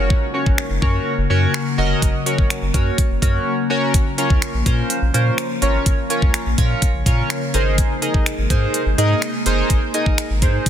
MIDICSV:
0, 0, Header, 1, 5, 480
1, 0, Start_track
1, 0, Tempo, 480000
1, 103, Time_signature, 4, 2, 24, 8
1, 10694, End_track
2, 0, Start_track
2, 0, Title_t, "Analog polysynth"
2, 0, Program_c, 0, 90
2, 0, Note_on_c, 0, 61, 96
2, 0, Note_on_c, 0, 66, 89
2, 0, Note_on_c, 0, 70, 92
2, 0, Note_on_c, 0, 73, 108
2, 245, Note_off_c, 0, 61, 0
2, 246, Note_off_c, 0, 66, 0
2, 247, Note_off_c, 0, 70, 0
2, 247, Note_off_c, 0, 73, 0
2, 337, Note_on_c, 0, 61, 87
2, 339, Note_on_c, 0, 66, 78
2, 342, Note_on_c, 0, 70, 75
2, 343, Note_on_c, 0, 73, 93
2, 650, Note_off_c, 0, 61, 0
2, 651, Note_off_c, 0, 66, 0
2, 652, Note_off_c, 0, 70, 0
2, 653, Note_off_c, 0, 73, 0
2, 817, Note_on_c, 0, 61, 92
2, 819, Note_on_c, 0, 66, 88
2, 822, Note_on_c, 0, 70, 83
2, 822, Note_on_c, 0, 73, 100
2, 1130, Note_off_c, 0, 61, 0
2, 1131, Note_off_c, 0, 66, 0
2, 1132, Note_off_c, 0, 70, 0
2, 1132, Note_off_c, 0, 73, 0
2, 1298, Note_on_c, 0, 61, 91
2, 1300, Note_on_c, 0, 66, 87
2, 1301, Note_on_c, 0, 70, 85
2, 1303, Note_on_c, 0, 73, 103
2, 1610, Note_off_c, 0, 61, 0
2, 1611, Note_off_c, 0, 66, 0
2, 1612, Note_off_c, 0, 70, 0
2, 1613, Note_off_c, 0, 73, 0
2, 1779, Note_on_c, 0, 61, 100
2, 1780, Note_on_c, 0, 66, 95
2, 1782, Note_on_c, 0, 70, 97
2, 1783, Note_on_c, 0, 75, 112
2, 2091, Note_off_c, 0, 61, 0
2, 2091, Note_off_c, 0, 66, 0
2, 2092, Note_off_c, 0, 70, 0
2, 2093, Note_off_c, 0, 75, 0
2, 2260, Note_on_c, 0, 61, 87
2, 2261, Note_on_c, 0, 66, 81
2, 2263, Note_on_c, 0, 70, 78
2, 2265, Note_on_c, 0, 73, 91
2, 2571, Note_off_c, 0, 61, 0
2, 2572, Note_off_c, 0, 66, 0
2, 2573, Note_off_c, 0, 70, 0
2, 2574, Note_off_c, 0, 73, 0
2, 2738, Note_on_c, 0, 61, 92
2, 2740, Note_on_c, 0, 66, 85
2, 2742, Note_on_c, 0, 70, 87
2, 2742, Note_on_c, 0, 73, 105
2, 3050, Note_off_c, 0, 61, 0
2, 3051, Note_off_c, 0, 66, 0
2, 3052, Note_off_c, 0, 70, 0
2, 3053, Note_off_c, 0, 73, 0
2, 3219, Note_on_c, 0, 61, 90
2, 3220, Note_on_c, 0, 66, 87
2, 3222, Note_on_c, 0, 70, 83
2, 3223, Note_on_c, 0, 73, 99
2, 3531, Note_off_c, 0, 61, 0
2, 3532, Note_off_c, 0, 66, 0
2, 3532, Note_off_c, 0, 70, 0
2, 3533, Note_off_c, 0, 73, 0
2, 3699, Note_on_c, 0, 61, 106
2, 3701, Note_on_c, 0, 66, 93
2, 3702, Note_on_c, 0, 70, 98
2, 3704, Note_on_c, 0, 73, 112
2, 3941, Note_off_c, 0, 61, 0
2, 3942, Note_off_c, 0, 66, 0
2, 3943, Note_off_c, 0, 70, 0
2, 3944, Note_off_c, 0, 73, 0
2, 4179, Note_on_c, 0, 61, 86
2, 4179, Note_on_c, 0, 65, 79
2, 4182, Note_on_c, 0, 70, 78
2, 4183, Note_on_c, 0, 73, 95
2, 4491, Note_off_c, 0, 61, 0
2, 4491, Note_off_c, 0, 65, 0
2, 4492, Note_off_c, 0, 70, 0
2, 4493, Note_off_c, 0, 73, 0
2, 4658, Note_on_c, 0, 61, 90
2, 4659, Note_on_c, 0, 65, 83
2, 4662, Note_on_c, 0, 70, 85
2, 4663, Note_on_c, 0, 72, 102
2, 4970, Note_off_c, 0, 61, 0
2, 4971, Note_off_c, 0, 65, 0
2, 4972, Note_off_c, 0, 70, 0
2, 4973, Note_off_c, 0, 72, 0
2, 5139, Note_on_c, 0, 61, 88
2, 5140, Note_on_c, 0, 65, 81
2, 5142, Note_on_c, 0, 70, 85
2, 5143, Note_on_c, 0, 72, 100
2, 5451, Note_off_c, 0, 61, 0
2, 5451, Note_off_c, 0, 65, 0
2, 5452, Note_off_c, 0, 70, 0
2, 5453, Note_off_c, 0, 72, 0
2, 5619, Note_on_c, 0, 61, 101
2, 5620, Note_on_c, 0, 65, 95
2, 5621, Note_on_c, 0, 70, 93
2, 5623, Note_on_c, 0, 73, 113
2, 5931, Note_off_c, 0, 61, 0
2, 5931, Note_off_c, 0, 65, 0
2, 5932, Note_off_c, 0, 70, 0
2, 5933, Note_off_c, 0, 73, 0
2, 6098, Note_on_c, 0, 61, 90
2, 6100, Note_on_c, 0, 65, 79
2, 6102, Note_on_c, 0, 70, 81
2, 6103, Note_on_c, 0, 73, 97
2, 6410, Note_off_c, 0, 61, 0
2, 6412, Note_off_c, 0, 65, 0
2, 6412, Note_off_c, 0, 70, 0
2, 6413, Note_off_c, 0, 73, 0
2, 6579, Note_on_c, 0, 61, 89
2, 6579, Note_on_c, 0, 65, 84
2, 6582, Note_on_c, 0, 70, 83
2, 6584, Note_on_c, 0, 73, 105
2, 6891, Note_off_c, 0, 61, 0
2, 6891, Note_off_c, 0, 65, 0
2, 6892, Note_off_c, 0, 70, 0
2, 6893, Note_off_c, 0, 73, 0
2, 7061, Note_on_c, 0, 61, 89
2, 7063, Note_on_c, 0, 65, 84
2, 7064, Note_on_c, 0, 70, 84
2, 7066, Note_on_c, 0, 73, 105
2, 7372, Note_off_c, 0, 61, 0
2, 7373, Note_off_c, 0, 65, 0
2, 7373, Note_off_c, 0, 70, 0
2, 7374, Note_off_c, 0, 73, 0
2, 7539, Note_on_c, 0, 63, 96
2, 7541, Note_on_c, 0, 68, 90
2, 7543, Note_on_c, 0, 70, 91
2, 7544, Note_on_c, 0, 72, 105
2, 7925, Note_off_c, 0, 63, 0
2, 7926, Note_off_c, 0, 68, 0
2, 7927, Note_off_c, 0, 70, 0
2, 7927, Note_off_c, 0, 72, 0
2, 8019, Note_on_c, 0, 63, 85
2, 8021, Note_on_c, 0, 68, 81
2, 8022, Note_on_c, 0, 70, 80
2, 8023, Note_on_c, 0, 75, 94
2, 8331, Note_off_c, 0, 63, 0
2, 8332, Note_off_c, 0, 68, 0
2, 8332, Note_off_c, 0, 70, 0
2, 8333, Note_off_c, 0, 75, 0
2, 8500, Note_on_c, 0, 63, 91
2, 8502, Note_on_c, 0, 68, 82
2, 8504, Note_on_c, 0, 70, 81
2, 8506, Note_on_c, 0, 72, 107
2, 8811, Note_off_c, 0, 63, 0
2, 8812, Note_off_c, 0, 68, 0
2, 8813, Note_off_c, 0, 70, 0
2, 8814, Note_off_c, 0, 72, 0
2, 8980, Note_on_c, 0, 63, 94
2, 8982, Note_on_c, 0, 68, 82
2, 8984, Note_on_c, 0, 70, 86
2, 8985, Note_on_c, 0, 75, 102
2, 9291, Note_off_c, 0, 63, 0
2, 9292, Note_off_c, 0, 68, 0
2, 9293, Note_off_c, 0, 70, 0
2, 9294, Note_off_c, 0, 75, 0
2, 9460, Note_on_c, 0, 63, 103
2, 9462, Note_on_c, 0, 68, 94
2, 9464, Note_on_c, 0, 70, 95
2, 9464, Note_on_c, 0, 72, 114
2, 9771, Note_off_c, 0, 63, 0
2, 9772, Note_off_c, 0, 68, 0
2, 9773, Note_off_c, 0, 70, 0
2, 9773, Note_off_c, 0, 72, 0
2, 9942, Note_on_c, 0, 63, 87
2, 9943, Note_on_c, 0, 68, 77
2, 9945, Note_on_c, 0, 70, 77
2, 9946, Note_on_c, 0, 75, 97
2, 10252, Note_off_c, 0, 63, 0
2, 10253, Note_off_c, 0, 68, 0
2, 10254, Note_off_c, 0, 70, 0
2, 10254, Note_off_c, 0, 75, 0
2, 10421, Note_on_c, 0, 63, 94
2, 10422, Note_on_c, 0, 68, 87
2, 10423, Note_on_c, 0, 70, 83
2, 10426, Note_on_c, 0, 72, 99
2, 10694, Note_off_c, 0, 63, 0
2, 10694, Note_off_c, 0, 68, 0
2, 10694, Note_off_c, 0, 70, 0
2, 10694, Note_off_c, 0, 72, 0
2, 10694, End_track
3, 0, Start_track
3, 0, Title_t, "Ambient pad"
3, 0, Program_c, 1, 92
3, 0, Note_on_c, 1, 49, 85
3, 0, Note_on_c, 1, 54, 76
3, 0, Note_on_c, 1, 58, 92
3, 3904, Note_off_c, 1, 54, 0
3, 3943, Note_on_c, 1, 53, 76
3, 7504, Note_off_c, 1, 49, 0
3, 7504, Note_off_c, 1, 58, 0
3, 7507, Note_off_c, 1, 53, 0
3, 7544, Note_on_c, 1, 48, 79
3, 7544, Note_on_c, 1, 56, 75
3, 7545, Note_on_c, 1, 58, 89
3, 10694, Note_off_c, 1, 48, 0
3, 10694, Note_off_c, 1, 56, 0
3, 10694, Note_off_c, 1, 58, 0
3, 10694, End_track
4, 0, Start_track
4, 0, Title_t, "Analog synth bass"
4, 0, Program_c, 2, 38
4, 0, Note_on_c, 2, 30, 96
4, 106, Note_off_c, 2, 30, 0
4, 465, Note_on_c, 2, 32, 86
4, 546, Note_off_c, 2, 32, 0
4, 702, Note_on_c, 2, 30, 96
4, 783, Note_off_c, 2, 30, 0
4, 823, Note_on_c, 2, 42, 102
4, 985, Note_off_c, 2, 42, 0
4, 1182, Note_on_c, 2, 30, 101
4, 1263, Note_off_c, 2, 30, 0
4, 1302, Note_on_c, 2, 42, 104
4, 1465, Note_off_c, 2, 42, 0
4, 1782, Note_on_c, 2, 29, 93
4, 1944, Note_off_c, 2, 29, 0
4, 2023, Note_on_c, 2, 30, 108
4, 2104, Note_off_c, 2, 30, 0
4, 2385, Note_on_c, 2, 32, 78
4, 2465, Note_off_c, 2, 32, 0
4, 2622, Note_on_c, 2, 30, 95
4, 2703, Note_off_c, 2, 30, 0
4, 2742, Note_on_c, 2, 42, 102
4, 2905, Note_off_c, 2, 42, 0
4, 3103, Note_on_c, 2, 30, 94
4, 3184, Note_off_c, 2, 30, 0
4, 3223, Note_on_c, 2, 42, 95
4, 3385, Note_off_c, 2, 42, 0
4, 3943, Note_on_c, 2, 34, 110
4, 4024, Note_off_c, 2, 34, 0
4, 4304, Note_on_c, 2, 37, 92
4, 4385, Note_off_c, 2, 37, 0
4, 4542, Note_on_c, 2, 34, 100
4, 4623, Note_off_c, 2, 34, 0
4, 4662, Note_on_c, 2, 46, 99
4, 4824, Note_off_c, 2, 46, 0
4, 5021, Note_on_c, 2, 34, 99
4, 5103, Note_off_c, 2, 34, 0
4, 5142, Note_on_c, 2, 46, 92
4, 5305, Note_off_c, 2, 46, 0
4, 5622, Note_on_c, 2, 32, 95
4, 5784, Note_off_c, 2, 32, 0
4, 5862, Note_on_c, 2, 34, 113
4, 5944, Note_off_c, 2, 34, 0
4, 6224, Note_on_c, 2, 37, 93
4, 6304, Note_off_c, 2, 37, 0
4, 6462, Note_on_c, 2, 34, 94
4, 6544, Note_off_c, 2, 34, 0
4, 6581, Note_on_c, 2, 46, 100
4, 6744, Note_off_c, 2, 46, 0
4, 6944, Note_on_c, 2, 34, 92
4, 7025, Note_off_c, 2, 34, 0
4, 7061, Note_on_c, 2, 46, 97
4, 7224, Note_off_c, 2, 46, 0
4, 7543, Note_on_c, 2, 32, 99
4, 7787, Note_off_c, 2, 32, 0
4, 8144, Note_on_c, 2, 34, 96
4, 8225, Note_off_c, 2, 34, 0
4, 8383, Note_on_c, 2, 32, 94
4, 8464, Note_off_c, 2, 32, 0
4, 8503, Note_on_c, 2, 44, 99
4, 8665, Note_off_c, 2, 44, 0
4, 8862, Note_on_c, 2, 32, 92
4, 8943, Note_off_c, 2, 32, 0
4, 8980, Note_on_c, 2, 44, 102
4, 9143, Note_off_c, 2, 44, 0
4, 9462, Note_on_c, 2, 30, 91
4, 9624, Note_off_c, 2, 30, 0
4, 9702, Note_on_c, 2, 32, 107
4, 9784, Note_off_c, 2, 32, 0
4, 10063, Note_on_c, 2, 34, 93
4, 10144, Note_off_c, 2, 34, 0
4, 10303, Note_on_c, 2, 32, 94
4, 10421, Note_on_c, 2, 44, 100
4, 10436, Note_off_c, 2, 32, 0
4, 10584, Note_off_c, 2, 44, 0
4, 10694, End_track
5, 0, Start_track
5, 0, Title_t, "Drums"
5, 103, Note_on_c, 9, 36, 111
5, 203, Note_off_c, 9, 36, 0
5, 464, Note_on_c, 9, 36, 87
5, 564, Note_off_c, 9, 36, 0
5, 582, Note_on_c, 9, 26, 100
5, 682, Note_off_c, 9, 26, 0
5, 823, Note_on_c, 9, 36, 84
5, 923, Note_off_c, 9, 36, 0
5, 1543, Note_on_c, 9, 26, 113
5, 1643, Note_off_c, 9, 26, 0
5, 2024, Note_on_c, 9, 36, 102
5, 2024, Note_on_c, 9, 42, 106
5, 2124, Note_off_c, 9, 36, 0
5, 2124, Note_off_c, 9, 42, 0
5, 2264, Note_on_c, 9, 42, 69
5, 2364, Note_off_c, 9, 42, 0
5, 2385, Note_on_c, 9, 36, 85
5, 2485, Note_off_c, 9, 36, 0
5, 2504, Note_on_c, 9, 26, 96
5, 2505, Note_on_c, 9, 42, 86
5, 2604, Note_off_c, 9, 26, 0
5, 2605, Note_off_c, 9, 42, 0
5, 2742, Note_on_c, 9, 42, 68
5, 2743, Note_on_c, 9, 36, 84
5, 2842, Note_off_c, 9, 42, 0
5, 2843, Note_off_c, 9, 36, 0
5, 2982, Note_on_c, 9, 36, 90
5, 2982, Note_on_c, 9, 42, 92
5, 3082, Note_off_c, 9, 36, 0
5, 3082, Note_off_c, 9, 42, 0
5, 3222, Note_on_c, 9, 36, 91
5, 3226, Note_on_c, 9, 42, 78
5, 3322, Note_off_c, 9, 36, 0
5, 3326, Note_off_c, 9, 42, 0
5, 3942, Note_on_c, 9, 42, 102
5, 3943, Note_on_c, 9, 36, 109
5, 4042, Note_off_c, 9, 42, 0
5, 4043, Note_off_c, 9, 36, 0
5, 4182, Note_on_c, 9, 42, 67
5, 4282, Note_off_c, 9, 42, 0
5, 4304, Note_on_c, 9, 36, 84
5, 4403, Note_off_c, 9, 36, 0
5, 4421, Note_on_c, 9, 26, 98
5, 4422, Note_on_c, 9, 42, 88
5, 4521, Note_off_c, 9, 26, 0
5, 4522, Note_off_c, 9, 42, 0
5, 4661, Note_on_c, 9, 36, 82
5, 4661, Note_on_c, 9, 42, 65
5, 4761, Note_off_c, 9, 36, 0
5, 4761, Note_off_c, 9, 42, 0
5, 4900, Note_on_c, 9, 42, 90
5, 5000, Note_off_c, 9, 42, 0
5, 5144, Note_on_c, 9, 42, 78
5, 5244, Note_off_c, 9, 42, 0
5, 5380, Note_on_c, 9, 26, 110
5, 5383, Note_on_c, 9, 42, 79
5, 5480, Note_off_c, 9, 26, 0
5, 5483, Note_off_c, 9, 42, 0
5, 5620, Note_on_c, 9, 42, 71
5, 5720, Note_off_c, 9, 42, 0
5, 5861, Note_on_c, 9, 42, 108
5, 5862, Note_on_c, 9, 36, 107
5, 5961, Note_off_c, 9, 42, 0
5, 5962, Note_off_c, 9, 36, 0
5, 6101, Note_on_c, 9, 42, 67
5, 6201, Note_off_c, 9, 42, 0
5, 6223, Note_on_c, 9, 36, 84
5, 6323, Note_off_c, 9, 36, 0
5, 6340, Note_on_c, 9, 26, 100
5, 6341, Note_on_c, 9, 42, 90
5, 6440, Note_off_c, 9, 26, 0
5, 6441, Note_off_c, 9, 42, 0
5, 6580, Note_on_c, 9, 42, 65
5, 6582, Note_on_c, 9, 36, 89
5, 6680, Note_off_c, 9, 42, 0
5, 6682, Note_off_c, 9, 36, 0
5, 6821, Note_on_c, 9, 42, 90
5, 6822, Note_on_c, 9, 36, 85
5, 6921, Note_off_c, 9, 42, 0
5, 6922, Note_off_c, 9, 36, 0
5, 7062, Note_on_c, 9, 36, 89
5, 7064, Note_on_c, 9, 42, 78
5, 7162, Note_off_c, 9, 36, 0
5, 7164, Note_off_c, 9, 42, 0
5, 7302, Note_on_c, 9, 26, 109
5, 7304, Note_on_c, 9, 42, 79
5, 7401, Note_off_c, 9, 26, 0
5, 7404, Note_off_c, 9, 42, 0
5, 7540, Note_on_c, 9, 42, 74
5, 7640, Note_off_c, 9, 42, 0
5, 7781, Note_on_c, 9, 42, 106
5, 7782, Note_on_c, 9, 36, 107
5, 7881, Note_off_c, 9, 42, 0
5, 7882, Note_off_c, 9, 36, 0
5, 8022, Note_on_c, 9, 42, 67
5, 8122, Note_off_c, 9, 42, 0
5, 8144, Note_on_c, 9, 36, 82
5, 8244, Note_off_c, 9, 36, 0
5, 8263, Note_on_c, 9, 26, 100
5, 8264, Note_on_c, 9, 42, 87
5, 8363, Note_off_c, 9, 26, 0
5, 8364, Note_off_c, 9, 42, 0
5, 8502, Note_on_c, 9, 36, 89
5, 8502, Note_on_c, 9, 42, 66
5, 8602, Note_off_c, 9, 36, 0
5, 8602, Note_off_c, 9, 42, 0
5, 8741, Note_on_c, 9, 42, 90
5, 8841, Note_off_c, 9, 42, 0
5, 8984, Note_on_c, 9, 42, 77
5, 9084, Note_off_c, 9, 42, 0
5, 9221, Note_on_c, 9, 26, 117
5, 9224, Note_on_c, 9, 42, 77
5, 9321, Note_off_c, 9, 26, 0
5, 9324, Note_off_c, 9, 42, 0
5, 9459, Note_on_c, 9, 42, 75
5, 9559, Note_off_c, 9, 42, 0
5, 9700, Note_on_c, 9, 42, 111
5, 9702, Note_on_c, 9, 36, 106
5, 9800, Note_off_c, 9, 42, 0
5, 9802, Note_off_c, 9, 36, 0
5, 9941, Note_on_c, 9, 42, 65
5, 10041, Note_off_c, 9, 42, 0
5, 10063, Note_on_c, 9, 36, 81
5, 10163, Note_off_c, 9, 36, 0
5, 10181, Note_on_c, 9, 26, 97
5, 10182, Note_on_c, 9, 42, 90
5, 10281, Note_off_c, 9, 26, 0
5, 10282, Note_off_c, 9, 42, 0
5, 10420, Note_on_c, 9, 42, 67
5, 10422, Note_on_c, 9, 36, 86
5, 10520, Note_off_c, 9, 42, 0
5, 10522, Note_off_c, 9, 36, 0
5, 10661, Note_on_c, 9, 42, 87
5, 10662, Note_on_c, 9, 36, 89
5, 10694, Note_off_c, 9, 36, 0
5, 10694, Note_off_c, 9, 42, 0
5, 10694, End_track
0, 0, End_of_file